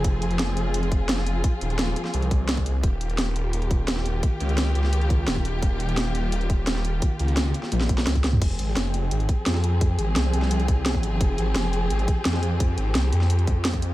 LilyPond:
<<
  \new Staff \with { instrumentName = "String section" } { \time 4/4 \key f \minor \tempo 4 = 172 <f c' f' aes'>1~ | <f c' f' aes'>1 | <ees bes f' g'>1~ | <ees bes f' g'>1~ |
<ees bes f' g'>1~ | <ees bes f' g'>1 | <f c' g' aes'>1~ | <f c' g' aes'>1~ |
<f c' g' aes'>1~ | <f c' g' aes'>1 | }
  \new Staff \with { instrumentName = "Detuned saw bass" } { \clef bass \time 4/4 \key f \minor f,,1 | r8 ees,,4 r8 c,2 | ees,,1 | r8 des,4 des,4. ees,,4 |
ees,,1 | r8 des,4 r8 bes,,4 des,4 | f,,8 aes,,8 f,,4 aes,,8 r8 f,4~ | f,8 aes,,8 c,8 c,2~ c,8 |
f,,8 aes,,8 f,,4 aes,,8 r8 f,4~ | f,8 aes,,8 c,8 f,4 f,4. | }
  \new DrumStaff \with { instrumentName = "Drums" } \drummode { \time 4/4 <hh bd>8 hh16 hh16 <hh sn>8 hh8 hh16 hh16 <hh bd>8 <hh sn>16 sn16 hh8 | <hh bd>8 hh16 hh16 <hh sn>8 hh16 sn16 hh16 hh16 <hh bd>8 <hh sn>16 <hh bd>16 hh8 | <hh bd>8 hh16 hh16 <hh sn>8 hh8 hh16 hh16 <hh bd>8 <hh sn>16 sn16 hh8 | <hh bd>8 hh16 hh16 <hh sn>8 hh16 sn16 hh16 hh16 <hh bd>8 <hh sn>16 bd16 hh8 |
<hh bd>8 hh16 hh16 <hh sn>8 hh8 hh16 hh16 <hh bd>8 <hh sn>16 sn16 hh8 | <hh bd>8 hh16 hh16 <hh sn>8 hh16 sn16 <hh tommh>16 <hh sn>16 <hh bd>16 sn16 <hh sn>16 <hh bd>16 <hh sn>16 toml16 | <cymc hh bd>8 hh8 <hh sn>8 hh8 hh16 hh16 <hh bd>8 <hh sn>16 sn16 hh8 | <hh bd>8 hh8 <hh sn>8 hh16 sn16 hh16 hh16 <hh bd>8 <hh sn>16 bd16 hh8 |
<hh bd>8 hh8 <hh sn>8 hh8 hh16 hh16 <hh bd>8 <hh sn>16 sn16 hh8 | <hh bd>8 hh8 <hh sn>8 hh16 sn16 hh16 hh16 <hh bd>8 <hh sn>16 <hh bd>16 hh8 | }
>>